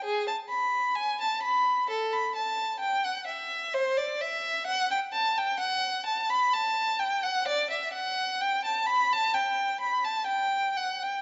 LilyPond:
\new Staff \with { instrumentName = "Violin" } { \time 4/4 \key g \major \tempo 4 = 64 gis'16 a''16 b''8 gis''16 a''16 b''8 a'16 b''16 a''8 g''16 fis''16 e''8 | c''16 d''16 e''8 fis''16 g''16 a''16 g''16 fis''8 a''16 b''16 a''8 g''16 fis''16 | d''16 e''16 fis''8 g''16 a''16 b''16 a''16 g''8 b''16 a''16 g''8 fis''16 g''16 | }